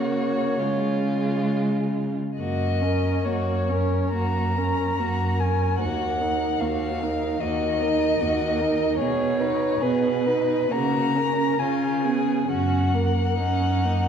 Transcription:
Already playing: cello C#3, viola A#3, violin F#4 C#5
0.59 cello C#3, viola G#3, violin F4
2.38 cello F#2, viola A#3, violin F#4 D#5
2.82 viola C#4, violin A#4
3.25 cello F#2, viola A#3, violin F#4 C#5
3.69 viola C#4, violin A#4
4.14 cello F#2, viola A#3, violin F#4 A#5
4.56 viola C#4, violin A#4
4.98 cello F#2, viola A#3, violin F#4
5.39 viola C#4, violin A#4 G#5
5.79 cello D#2, viola A#3, violin F#4 F#5
6.20 viola D#4, violin A#4
6.60 cello D#2, viola A#3, violin F#4 F5
7.01 viola D#4, violin A#4
7.40 cello D#2, viola A#3, violin F#4 D#5
7.81 viola D#4, violin A#4
8.20 cello D#2, viola A#3, violin F#4
8.59 viola D#4, violin A#4
8.99 cello B2, viola B3, violin G#4 C#5
9.40 viola D#4, violin B4
9.81 cello B2, viola B3, violin G#4 B4
10.25 viola D#4, violin B4
10.71 cello C#3, viola A#3, violin F#4 A#5
11.15 viola C#4, violin A#4
11.59 cello C#3, viola C#4, violin F4 G#5
12.04 viola B3, violin G#4
12.49 cello F#2, viola C#4, violin F#4 F#5
12.94 viola A#3, violin A#4
13.39 cello F#2, viola C#4, violin D#4
13.85 viola A#3

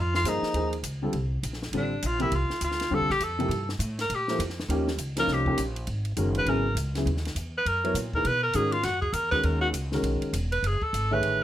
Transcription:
Already playing: upright bass F2
0.00 tenor saxophone F4
0.15 tenor saxophone F4, snare
0.24 upright bass G2, grand piano F3 A#3 D#4 G#4 C5, hi-hat pedal, ride
0.28 tenor saxophone D#4
0.42 muted upright bass stroke, snare
0.54 upright bass D#2, grand piano F3 A#3 D#4 G#4 C5, ride
0.73 ride
0.83 upright bass C#2, hi-hat pedal, ride
1.02 grand piano D3 G3 C4 F4 A4
1.13 upright bass C2, ride
1.43 upright bass A#1, hi-hat pedal, ride
1.53 snare
1.63 snare
1.72 upright bass A1, grand piano D3 G3 C4 F4 A4, ride
1.77 tenor saxophone D4
2.02 upright bass A#1, hi-hat pedal, ride
2.07 tenor saxophone F4
2.19 grand piano C3 F3 A#3 E4 G4, tenor saxophone E4, ride
2.32 upright bass C2, tenor saxophone F4, ride
2.50 snare
2.61 upright bass D2, tenor saxophone F4, hi-hat pedal, ride
2.71 snare
2.80 snare, ride
2.90 upright bass E2, grand piano D3 G3 C4 F4 A4, tenor saxophone A4
3.00 upright bass C2
3.10 upright bass A#1, tenor saxophone G4, snare
3.20 upright bass F2, tenor saxophone A4, hi-hat pedal, ride
3.39 grand piano C3 F3 A#3 E4 G4, ride
3.48 upright bass G2, ride
3.69 snare
3.79 upright bass A2, hi-hat pedal, ride
3.99 tenor saxophone A#4, snare, ride
4.10 upright bass A#2, ride
4.15 tenor saxophone G4
4.28 grand piano F3 A#3 E4 A4 C5, snare
4.39 upright bass F2, hi-hat pedal, ride
4.50 snare
4.60 snare
4.69 upright bass D#2, grand piano F3 A#3 C#4 D#4 G4, ride
4.88 snare
4.98 upright bass C#2, hi-hat pedal, ride
5.16 grand piano F3 A#3 C#4 D#4 F4, tenor saxophone A#4, snare, ride
5.28 upright bass C2, snare
5.33 tenor saxophone G4
5.46 grand piano F3 A#3 C#4 D#4 G4, kick
5.58 upright bass A#1, hi-hat pedal, ride
5.76 ride
5.87 upright bass G#1, ride
6.05 ride
6.16 upright bass F#1, grand piano D#3 G#3 C#4 F#4 A#4, hi-hat pedal, ride
6.35 tenor saxophone B4, ride
6.45 upright bass G#1, grand piano C#3 F#3 B3 E4 G#4, tenor saxophone A#4, ride
6.75 upright bass C#2, hi-hat pedal, ride
6.95 grand piano C#3 F#3 B3 E4 G#4, snare, ride
7.06 upright bass D#2, ride
7.17 snare
7.25 snare, ride
7.35 upright bass E2, hi-hat pedal, ride
7.58 tenor saxophone B4
7.65 upright bass F#2, tenor saxophone A#4, ride
7.84 grand piano F#3 B3 E4 A#4 C#5, ride
7.94 upright bass A#2, hi-hat pedal, ride
8.13 grand piano E3 A#3 D#4 G#4 B4, tenor saxophone A#4, kick
8.25 upright bass B2, tenor saxophone B4, ride
8.43 tenor saxophone A#4
8.53 upright bass G#2, grand piano D#3 G#3 C#4 F#4 A#4, tenor saxophone G#4, hi-hat pedal, ride
8.72 tenor saxophone F4, ride
8.83 upright bass F#2, tenor saxophone F#4, snare, ride
9.01 tenor saxophone G#4, kick
9.13 upright bass E2, tenor saxophone A#4, hi-hat pedal, ride
9.31 grand piano D#3 G#3 C#4 F#4 A#4, tenor saxophone B4, kick
9.43 upright bass D#2, tenor saxophone A#4, ride
9.61 tenor saxophone F#4
9.73 upright bass C#2, hi-hat pedal, ride
9.92 grand piano D#3 G#3 C#4 F#4 A#4, snare
10.03 upright bass B1, ride
10.22 muted upright bass stroke, ride
10.33 upright bass E1, hi-hat pedal, ride
10.52 tenor saxophone B4, ride
10.62 upright bass F#1, ride
10.67 tenor saxophone G#4
10.82 tenor saxophone A4, muted upright bass stroke, kick
10.93 upright bass G#1, hi-hat pedal, ride
11.11 grand piano D#3 A3 G#4 C#5 E5, tenor saxophone B4
11.21 upright bass A1, ride

